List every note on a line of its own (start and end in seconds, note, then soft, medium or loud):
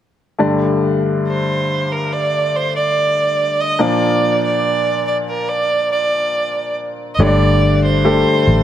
0.39 3.76 G2 soft
0.39 3.76 D3 soft
0.39 3.75 A3 soft
0.39 3.75 D4 soft
0.39 3.75 G4 soft
0.39 3.76 D5 soft
1.28 1.93 C5 medium
1.92 2.14 A#4 soft
2.13 2.58 D5 medium
2.56 2.75 C5 medium
2.76 3.63 D5 medium
3.61 3.83 D#5 medium
3.79 7.16 A#2 soft
3.79 7.16 F3 soft
3.79 7.16 A#3 soft
3.79 7.16 D4 soft
3.79 7.16 F4 soft
3.79 7.16 D5 soft
3.79 4.44 D5 medium
4.44 5.03 D5 medium
5.07 5.17 D5 medium
5.29 5.50 A#4 medium
5.49 5.91 D5 medium
5.92 6.73 D5 medium
7.15 8.22 G1 medium
7.15 7.23 D#5 medium
7.20 8.44 G2 soft
7.20 8.44 D3 soft
7.20 8.01 A3 soft
7.20 8.01 D4 soft
7.20 8.01 G4 soft
7.20 7.26 C#5 soft
7.20 7.84 D5 medium
7.27 8.05 D5 medium
7.85 8.63 C5 medium
8.05 8.63 A3 medium
8.05 8.63 D4 soft
8.05 8.63 G4 soft
8.05 8.63 A4 medium
8.47 8.63 A1 medium